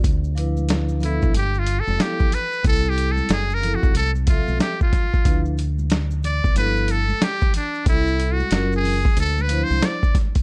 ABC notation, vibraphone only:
X:1
M:4/4
L:1/8
Q:"Swing 16ths" 1/4=92
K:Ddor
V:1 name="Vibraphone"
z [F,DEB]2 [F,B,EA] z2 [F,B,EA] z | [G,CEA]2 z [^E,^B,=EA] z [F,CAe] z2 | [F,DEB] z3 [F,B,EA] z3 | [G,CEA] z [^F,^C^E^A] z2 [=F,D=E=c] z2 |]